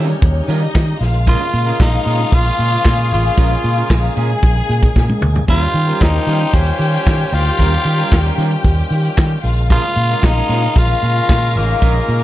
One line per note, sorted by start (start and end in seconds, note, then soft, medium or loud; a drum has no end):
0.00 5.44 C#3 medium
0.00 0.13 D#3 loud
0.00 0.15 G3 medium
0.00 0.98 G3 medium
0.00 0.45 C#4 medium
0.00 0.97 D#4 medium
0.00 0.71 F4 medium
0.00 0.71 G4 medium
0.00 0.99 G4 medium
0.00 0.71 A#4 loud
0.00 0.45 C#5 loud
0.08 muted clean electric guitar stroke soft
0.08 closed hi-hat medium
0.22 0.39 D#2 loud
0.22 muted clean electric guitar stroke medium
0.22 kick loud
0.22 closed hi-hat medium
0.35 muted clean electric guitar stroke soft
0.48 0.65 D#3 loud
0.48 0.62 G3 medium
0.48 0.61 C#4 medium
0.48 1.00 D#4 medium
0.48 0.60 F4 loud
0.48 0.60 A#4 loud
0.48 1.00 D#5 medium
0.48 closed hi-hat medium
0.61 muted clean electric guitar stroke soft
0.61 closed hi-hat medium
0.74 0.92 D#3 loud
0.74 muted clean electric guitar stroke soft
0.74 kick loud
0.74 snare loud
0.74 clap medium
0.87 muted clean electric guitar stroke soft
0.87 closed hi-hat soft
1.00 1.34 A#1 loud
1.00 5.45 G#3 medium
1.00 5.44 A#3 medium
1.00 4.13 F4 medium
1.00 3.09 F4 medium
1.00 4.13 F5 loud
1.00 snare soft
1.00 open hi-hat medium
1.14 muted clean electric guitar stroke soft
1.14 closed hi-hat soft
1.27 1.41 G#3 loud
1.27 1.40 C#4 medium
1.27 1.40 F4 loud
1.27 1.77 F4 loud
1.27 1.39 A#4 loud
1.27 kick medium
1.27 closed hi-hat medium
1.40 muted clean electric guitar stroke soft
1.40 closed hi-hat soft
1.53 1.71 A#2 loud
1.53 muted clean electric guitar stroke soft
1.53 closed hi-hat medium
1.66 1.78 G#3 medium
1.66 1.78 C#4 medium
1.66 1.78 F4 medium
1.66 1.77 A#4 medium
1.66 closed hi-hat medium
1.80 1.97 A#1 loud
1.80 2.36 D#4 loud
1.80 muted clean electric guitar stroke medium
1.80 kick loud
1.80 snare loud
1.80 clap loud
1.92 2.04 G#3 medium
1.92 2.04 C#4 medium
1.92 2.04 F4 medium
1.92 2.04 A#4 medium
1.92 closed hi-hat soft
2.06 2.23 A#2 loud
2.06 2.20 G#3 medium
2.06 4.92 C#4 medium
2.06 2.19 C#4 medium
2.06 4.92 F4 loud
2.06 2.19 F4 loud
2.06 4.92 G#4 loud
2.06 2.18 A#4 loud
2.06 open hi-hat medium
2.19 muted clean electric guitar stroke soft
2.19 closed hi-hat medium
2.32 2.49 A#1 loud
2.32 3.12 F4 loud
2.32 kick loud
2.32 closed hi-hat medium
2.45 muted clean electric guitar stroke soft
2.45 closed hi-hat soft
2.59 2.76 A#2 medium
2.59 closed hi-hat medium
2.72 muted clean electric guitar stroke soft
2.72 closed hi-hat medium
2.85 3.13 A#2 loud
2.85 muted clean electric guitar stroke medium
2.85 kick loud
2.85 snare loud
2.85 clap loud
2.97 muted clean electric guitar stroke soft
2.97 closed hi-hat soft
3.10 3.28 A1 medium
3.10 4.14 F4 loud
3.10 5.45 G#4 medium
3.10 open hi-hat medium
3.24 muted clean electric guitar stroke soft
3.24 closed hi-hat soft
3.37 3.55 A#1 loud
3.37 3.51 G#3 medium
3.37 3.51 C#4 loud
3.37 3.50 F4 loud
3.37 3.50 A#4 loud
3.37 kick loud
3.37 closed hi-hat medium
3.51 muted clean electric guitar stroke soft
3.64 3.81 A#2 medium
3.64 muted clean electric guitar stroke medium
3.64 closed hi-hat medium
3.77 3.88 G#3 soft
3.77 3.88 C#4 soft
3.77 3.88 F4 medium
3.77 3.88 A#4 medium
3.77 closed hi-hat soft
3.89 4.07 A#1 loud
3.89 muted clean electric guitar stroke medium
3.89 kick loud
3.89 snare loud
3.89 clap loud
4.03 4.15 G#3 soft
4.03 4.15 C#4 medium
4.03 4.15 F4 medium
4.03 4.14 A#4 medium
4.16 4.34 A#2 medium
4.16 4.30 G#3 medium
4.16 4.29 C#4 medium
4.16 4.29 F4 medium
4.16 5.19 G#4 medium
4.16 4.29 A#4 medium
4.16 5.19 G#5 loud
4.16 open hi-hat medium
4.29 muted clean electric guitar stroke soft
4.29 closed hi-hat medium
4.43 4.60 A#1 loud
4.43 muted clean electric guitar stroke soft
4.43 kick loud
4.43 closed hi-hat medium
4.56 muted clean electric guitar stroke medium
4.56 closed hi-hat soft
4.69 4.86 A#2 medium
4.69 closed hi-hat medium
4.82 muted clean electric guitar stroke soft
4.82 kick loud
4.82 closed hi-hat medium
4.95 5.13 A#2 loud
4.95 muted clean electric guitar stroke soft
4.95 kick loud
4.95 snare medium
5.08 muted clean electric guitar stroke soft
5.08 high tom medium
5.22 5.39 D2 loud
5.22 mid tom loud
5.35 muted clean electric guitar stroke medium
5.35 floor tom medium
5.48 5.65 D#2 loud
5.48 9.40 D#3 medium
5.48 9.40 G3 medium
5.48 5.62 G3 medium
5.48 9.40 C#4 medium
5.48 5.61 C#4 loud
5.48 11.51 F4 medium
5.48 9.14 F4 medium
5.48 5.61 F4 loud
5.48 6.04 F4 loud
5.48 9.14 G4 medium
5.48 9.40 G4 loud
5.48 5.61 A#4 loud
5.48 9.14 C5 loud
5.48 9.40 G5 loud
5.48 kick loud
5.48 closed hi-hat medium
5.62 muted clean electric guitar stroke soft
5.74 5.91 D#3 loud
5.74 muted clean electric guitar stroke medium
5.74 closed hi-hat medium
5.88 5.99 G3 medium
5.88 5.99 C#4 medium
5.88 5.99 F4 medium
5.88 5.99 A#4 medium
5.88 closed hi-hat medium
6.01 6.18 D#2 loud
6.01 6.57 D#4 loud
6.01 muted clean electric guitar stroke soft
6.01 kick loud
6.01 snare loud
6.01 clap loud
6.14 6.26 G3 medium
6.14 6.26 C#4 medium
6.14 6.25 F4 medium
6.14 6.25 A#4 medium
6.14 closed hi-hat soft
6.27 6.44 D#3 medium
6.27 6.42 G3 medium
6.27 6.41 C#4 loud
6.27 6.40 F4 medium
6.27 6.39 A#4 loud
6.27 open hi-hat medium
6.40 muted clean electric guitar stroke soft
6.40 closed hi-hat medium
6.54 6.71 D#2 loud
6.54 7.36 C#4 loud
6.54 kick loud
6.54 closed hi-hat medium
6.66 muted clean electric guitar stroke soft
6.66 closed hi-hat soft
6.79 6.96 D#3 medium
6.79 closed hi-hat medium
6.93 muted clean electric guitar stroke soft
6.93 closed hi-hat medium
7.06 7.23 D#3 loud
7.06 kick loud
7.06 snare loud
7.06 clap loud
7.19 muted clean electric guitar stroke soft
7.32 7.49 D2 loud
7.32 8.39 F4 loud
7.32 snare soft
7.32 open hi-hat medium
7.45 muted clean electric guitar stroke medium
7.45 closed hi-hat soft
7.58 7.76 D#2 loud
7.58 7.73 G3 medium
7.58 7.71 C#4 loud
7.58 7.71 F4 loud
7.58 7.70 A#4 loud
7.58 kick medium
7.58 closed hi-hat medium
7.71 muted clean electric guitar stroke soft
7.71 closed hi-hat soft
7.85 8.02 D#3 medium
7.85 muted clean electric guitar stroke soft
7.85 closed hi-hat medium
7.98 8.10 G3 medium
7.98 8.10 C#4 medium
7.98 8.10 F4 medium
7.98 8.09 A#4 medium
7.98 closed hi-hat soft
8.12 8.29 D#2 loud
8.12 muted clean electric guitar stroke medium
8.12 kick loud
8.12 snare loud
8.12 clap loud
8.24 8.37 G3 medium
8.24 8.36 C#4 medium
8.24 8.36 F4 medium
8.24 8.36 A#4 medium
8.24 closed hi-hat soft
8.38 8.55 D#3 medium
8.38 8.52 G3 medium
8.38 8.51 C#4 medium
8.38 8.50 F4 medium
8.38 8.50 A#4 medium
8.38 open hi-hat medium
8.51 muted clean electric guitar stroke soft
8.51 closed hi-hat medium
8.64 8.82 D#2 loud
8.64 muted clean electric guitar stroke medium
8.64 kick loud
8.64 closed hi-hat medium
8.78 muted clean electric guitar stroke medium
8.78 closed hi-hat soft
8.91 9.08 D#3 medium
8.91 closed hi-hat medium
9.04 muted clean electric guitar stroke medium
9.04 closed hi-hat medium
9.17 9.35 D#3 loud
9.17 muted clean electric guitar stroke medium
9.17 kick loud
9.17 snare loud
9.17 clap loud
9.30 muted clean electric guitar stroke soft
9.30 closed hi-hat soft
9.43 9.78 A#1 loud
9.43 12.23 C#3 medium
9.43 12.23 G#3 medium
9.43 12.23 A#3 medium
9.43 12.23 F4 medium
9.43 12.23 F5 loud
9.43 open hi-hat medium
9.57 muted clean electric guitar stroke soft
9.57 closed hi-hat soft
9.70 9.84 G#3 loud
9.70 9.83 C#4 medium
9.70 9.83 F4 loud
9.70 10.27 F4 loud
9.70 9.83 A#4 loud
9.70 kick loud
9.70 closed hi-hat medium
9.83 muted clean electric guitar stroke soft
9.83 closed hi-hat soft
9.96 10.14 A#2 loud
9.96 closed hi-hat medium
10.10 10.22 G#3 medium
10.10 10.22 C#4 medium
10.10 10.22 F4 medium
10.10 10.21 A#4 medium
10.10 closed hi-hat soft
10.23 10.40 A#1 loud
10.23 10.80 D#4 loud
10.23 muted clean electric guitar stroke soft
10.23 kick loud
10.23 snare loud
10.23 clap loud
10.36 10.48 G#3 medium
10.36 10.48 C#4 medium
10.36 10.48 F4 medium
10.36 10.47 A#4 medium
10.49 10.66 A#2 loud
10.49 10.64 G#3 medium
10.49 12.23 C#4 medium
10.49 10.62 C#4 loud
10.49 12.23 F4 medium
10.49 10.62 F4 loud
10.49 12.23 A#4 loud
10.49 10.61 A#4 loud
10.49 open hi-hat medium
10.63 muted clean electric guitar stroke soft
10.63 closed hi-hat medium
10.76 10.93 A#1 loud
10.76 11.59 F4 loud
10.76 muted clean electric guitar stroke soft
10.76 kick loud
10.76 closed hi-hat medium
10.89 muted clean electric guitar stroke soft
10.89 closed hi-hat soft
11.03 11.20 A#2 loud
11.03 closed hi-hat medium
11.15 muted clean electric guitar stroke medium
11.15 closed hi-hat medium
11.29 11.57 A#2 loud
11.29 muted clean electric guitar stroke soft
11.29 kick loud
11.29 snare loud
11.29 clap medium
11.41 muted clean electric guitar stroke medium
11.55 11.73 A1 medium
11.55 12.23 A#3 medium
11.55 12.23 D#4 medium
11.55 open hi-hat medium
11.68 muted clean electric guitar stroke soft
11.68 closed hi-hat soft
11.81 11.99 A#1 loud
11.81 11.96 G#3 medium
11.81 11.94 C#4 loud
11.81 11.93 F4 loud
11.81 11.93 A#4 loud
11.81 kick medium
11.81 closed hi-hat medium
11.94 muted clean electric guitar stroke soft
11.94 closed hi-hat soft
12.08 12.23 A#2 medium
12.08 muted clean electric guitar stroke medium
12.08 closed hi-hat medium